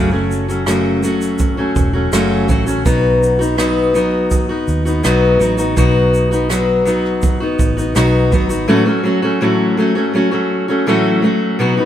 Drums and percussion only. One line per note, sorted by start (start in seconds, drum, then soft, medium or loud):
0.31 shaker soft
0.50 shaker soft
0.66 cross-stick loud
0.66 shaker medium
1.03 shaker medium
1.21 cross-stick soft
1.21 shaker medium
1.39 kick medium
1.39 shaker medium
1.76 kick medium
1.76 shaker soft
2.13 cross-stick loud
2.13 shaker medium
2.49 kick medium
2.49 shaker soft
2.67 shaker medium
2.86 kick loud
2.86 shaker medium
3.23 shaker soft
3.42 shaker soft
3.58 cross-stick loud
3.58 shaker medium
3.95 shaker medium
4.31 kick medium
4.31 shaker medium
4.68 shaker soft
4.86 shaker soft
5.04 cross-stick loud
5.04 shaker medium
5.41 shaker soft
5.58 shaker medium
5.77 kick medium
5.77 shaker medium
6.14 shaker soft
6.33 shaker soft
6.50 cross-stick loud
6.50 shaker medium
6.87 shaker medium
7.05 cross-stick soft
7.22 kick loud
7.22 shaker medium
7.59 kick medium
7.59 shaker soft
7.78 shaker soft
7.96 cross-stick loud
7.96 shaker medium
8.32 kick medium
8.32 shaker soft
8.50 shaker medium